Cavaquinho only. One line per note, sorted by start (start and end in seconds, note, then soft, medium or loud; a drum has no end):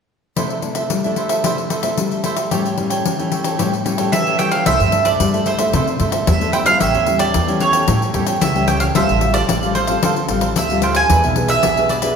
0.36 0.49 E4 medium
0.36 0.49 A4 medium
0.36 0.50 C5 medium
0.36 0.49 E5 medium
0.50 0.62 A4 soft
0.50 0.62 C5 soft
0.50 0.63 E5 soft
0.63 muted cavaquinho stroke soft
0.75 1.03 A4 soft
0.75 1.02 C5 soft
0.75 1.02 E5 medium
1.04 1.16 A4 soft
1.04 1.16 C5 soft
1.04 1.16 E5 soft
1.16 1.29 E4 soft
1.16 1.30 A4 soft
1.16 1.29 C5 soft
1.16 1.28 E5 soft
1.29 1.43 A4 medium
1.29 1.43 C5 soft
1.29 1.42 E5 medium
1.44 1.57 E4 medium
1.44 1.57 A4 medium
1.44 1.57 C5 medium
1.44 1.57 E5 medium
1.58 muted cavaquinho stroke soft
1.70 1.83 E4 soft
1.70 1.83 A4 soft
1.70 1.82 C5 soft
1.70 1.81 E5 soft
1.83 2.10 A4 soft
1.83 2.10 C5 medium
1.83 2.09 E5 medium
2.12 2.23 A4 soft
2.12 2.24 C5 soft
2.12 2.24 E5 soft
2.24 2.37 E4 medium
2.24 2.37 A4 medium
2.24 2.36 C5 medium
2.24 2.35 E5 medium
2.36 2.50 A4 soft
2.36 2.49 E5 soft
2.51 2.64 G4 medium
2.51 2.64 A4 medium
2.51 2.64 C#5 medium
2.51 2.64 G5 medium
2.65 2.76 A4 soft
2.65 2.77 C#5 soft
2.65 2.77 G5 soft
2.77 muted cavaquinho stroke soft
2.90 3.18 A4 soft
2.90 3.17 C#5 medium
2.90 3.17 G5 medium
3.19 3.31 A4 soft
3.19 3.32 C#5 soft
3.19 3.31 G5 soft
3.31 3.44 G4 soft
3.31 3.44 A4 soft
3.31 3.44 C#5 soft
3.31 3.43 G5 soft
3.44 3.58 A4 medium
3.44 3.58 C#5 medium
3.44 3.57 G5 medium
3.58 3.71 G4 medium
3.58 3.71 A4 medium
3.58 3.72 C#5 medium
3.58 3.72 G5 medium
3.73 muted cavaquinho stroke soft
3.85 3.98 G4 soft
3.85 3.98 A4 soft
3.85 3.97 C#5 soft
3.85 3.96 G5 soft
3.98 4.25 A4 soft
3.98 4.25 C#5 medium
3.98 4.24 G5 medium
4.26 4.38 A4 soft
4.26 4.38 C#5 soft
4.26 4.39 G5 soft
4.38 4.51 G4 medium
4.38 4.52 A4 medium
4.38 4.51 C#5 medium
4.38 4.50 G5 medium
4.51 4.65 A4 soft
4.51 4.65 C#5 soft
4.51 4.64 G5 soft
4.66 4.78 E4 medium
4.66 4.79 A4 medium
4.66 4.79 C5 medium
4.66 4.79 E5 medium
4.80 4.92 A4 soft
4.80 4.92 C5 soft
4.80 4.92 E5 soft
4.92 muted cavaquinho stroke soft
5.05 5.32 A4 medium
5.05 5.32 C5 medium
5.05 5.31 E5 medium
5.33 5.45 A4 soft
5.33 5.46 C5 soft
5.33 5.46 E5 soft
5.46 5.59 E4 soft
5.46 5.59 A4 soft
5.46 5.59 C5 medium
5.46 5.58 E5 soft
5.59 5.73 A4 medium
5.59 5.72 C5 medium
5.59 5.72 E5 medium
5.73 5.86 E4 medium
5.73 5.86 A4 medium
5.73 5.87 C5 medium
5.73 5.87 E5 medium
5.88 muted cavaquinho stroke soft
5.99 6.12 E4 soft
5.99 6.12 A4 soft
5.99 6.12 C5 soft
5.99 6.11 E5 medium
6.12 6.40 A4 medium
6.12 6.39 C5 medium
6.12 6.39 E5 medium
6.40 6.52 A4 soft
6.40 6.53 C5 soft
6.40 6.53 E5 soft
6.52 6.66 E4 medium
6.52 6.66 A4 medium
6.52 6.65 C5 medium
6.52 6.63 E5 medium
6.65 6.79 A4 soft
6.65 6.79 C5 soft
6.65 6.78 E5 soft
6.80 6.93 G4 medium
6.80 6.93 A4 medium
6.80 6.93 C#5 medium
6.80 6.92 G5 medium
6.94 7.05 A4 soft
6.94 7.05 C#5 soft
6.94 7.05 G5 soft
7.06 muted cavaquinho stroke soft
7.18 7.46 A4 soft
7.18 7.46 C#5 soft
7.18 7.45 G5 medium
7.47 7.59 A4 soft
7.47 7.60 C#5 soft
7.47 7.60 G5 soft
7.60 7.73 G4 soft
7.60 7.73 A4 soft
7.60 7.72 C#5 soft
7.60 7.71 G5 soft
7.72 7.87 A4 medium
7.72 7.87 C#5 medium
7.72 7.86 G5 medium
7.87 8.00 G4 medium
7.87 8.00 A4 medium
7.87 8.01 C#5 medium
7.87 8.01 G5 medium
8.02 muted cavaquinho stroke soft
8.13 8.27 G4 soft
8.13 8.27 A4 soft
8.13 8.26 C#5 soft
8.13 8.25 G5 medium
8.26 8.54 A4 medium
8.26 8.54 C#5 medium
8.26 8.53 G5 medium
8.55 8.67 A4 soft
8.55 8.68 C#5 soft
8.55 8.68 G5 soft
8.67 8.80 G4 medium
8.67 8.81 A4 medium
8.67 8.80 C#5 medium
8.67 8.79 G5 medium
8.80 8.95 A4 soft
8.80 8.94 C#5 soft
8.80 8.94 G5 soft
8.95 9.08 D4 medium
8.95 9.08 A4 medium
8.95 9.08 C5 medium
8.95 9.08 F5 medium
9.09 9.21 A4 soft
9.09 9.21 C5 soft
9.09 9.21 F5 soft
9.22 muted cavaquinho stroke soft
9.34 9.62 A4 medium
9.34 9.61 C5 medium
9.34 9.61 F5 medium
9.63 9.74 A4 soft
9.63 9.75 C5 soft
9.63 9.75 F5 soft
9.75 9.88 D4 soft
9.75 9.88 A4 soft
9.75 9.87 C5 soft
9.75 9.86 F5 medium
9.87 10.02 A4 medium
9.87 10.01 C5 medium
9.87 10.01 F5 medium
10.02 10.15 D4 medium
10.02 10.15 A4 medium
10.02 10.16 C5 medium
10.02 10.16 F5 medium
10.17 muted cavaquinho stroke soft
10.29 10.42 D4 soft
10.29 10.42 A4 soft
10.29 10.41 C5 medium
10.29 10.40 F5 soft
10.41 10.69 A4 soft
10.41 10.68 C5 medium
10.41 10.68 F5 medium
10.70 10.82 A4 soft
10.70 10.82 C5 soft
10.70 10.82 F5 soft
10.82 10.95 D4 medium
10.82 10.95 A4 medium
10.82 10.95 C5 medium
10.82 10.94 F5 medium
10.95 11.09 A4 soft
10.95 11.09 C5 soft
10.95 11.08 F5 soft
11.09 11.22 D4 medium
11.09 11.22 G#4 medium
11.09 11.23 B4 medium
11.09 11.23 E5 medium
11.24 11.35 G#4 soft
11.24 11.35 B4 soft
11.24 11.36 E5 soft
11.36 muted cavaquinho stroke soft
11.48 11.76 G#4 soft
11.48 11.76 B4 medium
11.48 11.75 E5 medium
11.77 11.89 G#4 soft
11.77 11.89 B4 soft
11.77 11.89 E5 soft
11.89 12.02 D4 medium
11.89 12.03 G#4 medium
11.89 12.02 B4 soft
11.89 12.01 E5 soft
12.02 12.16 G#4 soft
12.02 12.16 B4 medium
12.02 12.15 E5 medium